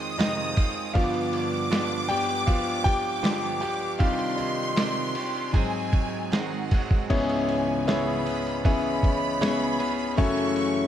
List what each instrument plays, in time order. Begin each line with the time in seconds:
Already playing: clean electric guitar D#3 G#3 C4 F4, grand piano G#4 G#5, violin section D#6
0.18 clean electric guitar F2 C3 D#3 G#3 C4 F4, grand piano D#4 D#5, snare, ride
0.56 clean electric guitar D#3 G#3 C4 F4, kick, ride
0.94 grand piano G2 F3 B3 F4 F5, clean electric guitar G2 D3 F3 B3 D4 G4, violin section D6, kick, ride
1.14 ride
1.33 ride
1.71 clean electric guitar G2 D3 F3 B3 D4 G4, snare, ride
2.09 grand piano G2 F3 B3 G4 G5, clean electric guitar F3 B3 D4 G4, ride
2.29 ride
2.46 clean electric guitar F3 B3 D4 G4, grand piano F4 F5, kick, ride
2.84 grand piano G4 G5, kick, ride
3.23 clean electric guitar G2 D3 F3 B3 D4 G4, snare, ride
3.61 clean electric guitar F3 B3 D4 G4, grand piano G4 G5, ride
3.99 grand piano C3 G3 D#4 F4 F5, clean electric guitar C3 D#3 C4 D4 G4, violin section C6, kick, ride
4.19 ride
4.37 grand piano D#4 D#5, ride
4.76 clean electric guitar C3 D#3 C4 D4 G4, snare, ride
5.15 clean electric guitar C4 D4 G4, ride
5.52 grand piano G#2 F#3 C4, clean electric guitar F#3 G#3 C4 G#4, violin section G#5, kick, ride
5.93 kick, ride
6.32 clean electric guitar G#2 D#3 F#3 G#3 C4 G#4, violin section F#5, snare, ride
6.71 clean electric guitar F#3 G#3 C4 G#4, kick, snare, ride
6.91 kick
7.10 grand piano C#2 G#2 B3 C#4 E4 G#4 C#5, clean electric guitar C#3 E3 B3 C#4 G#4, violin section G#5, kick, crash, ride
7.29 ride
7.49 ride
7.87 clean electric guitar C#3 E3 B3 C#4 G#4, grand piano B3 C#4 E4 G#4 C#5, violin section B5, snare, ride
8.26 clean electric guitar B3 C#4 G#4, ride
8.47 ride
8.64 clean electric guitar E3 B3 C#4 G#4, grand piano B3 C#4 E4 G#4 C#5, violin section B5, kick, ride
9.03 kick, ride
9.41 clean electric guitar C#3 E3 B3 C#4 G#4, grand piano B3 C#4 E4 G#4 C#5, snare, ride
9.79 clean electric guitar B3 C#4 G#4, ride
10.17 clean electric guitar F#2 C#3 E3 A3 C#4 A4, grand piano F#2 C#3 A3 C#4 E4 F#4 C#5, violin section C#6, kick, ride
10.37 ride
10.56 ride